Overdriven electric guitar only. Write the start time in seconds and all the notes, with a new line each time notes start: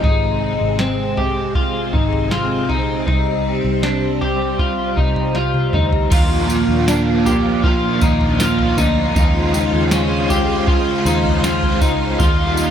6.11 D#3 D4 F4 A#4
6.48 D4 F4 A#4
6.87 D#3 D4 F4 A#4
7.24 D4 F4 A#4
7.63 D#3 D4 F4 A#4
8.01 D4 F4 A#4
8.39 D#3 D4 F4 A#4
8.77 D4 F4 A#4
9.15 D#3 G#3 C4 C#4 F4
9.53 C4 C#4 F4
9.90 D#3 G#3 C4 C#4 F4
10.28 C4 C#4 F4
10.67 G#3 C4 C#4 F4
11.05 C4 C#4 F4
11.43 D#3 G#3 C4 C#4 F4
11.81 C4 C#4 F4
12.19 D#3 G3 A#3 D#4 F4
12.56 A#3 D#4 F4